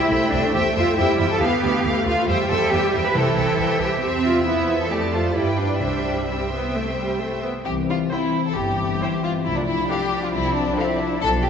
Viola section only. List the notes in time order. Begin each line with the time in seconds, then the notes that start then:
0.11 A3
0.97 G3
1.40 B3
1.85 A3
2.28 G3
3.15 E3
4.02 C4
4.47 B3
4.90 A3
5.35 G3
5.81 G3
6.27 G3
6.51 B3
6.73 A3
6.97 G3
7.20 A3
7.43 B3
8.11 E4 C5
9.01 E4 C5
9.90 D4 A4
10.77 D4 A4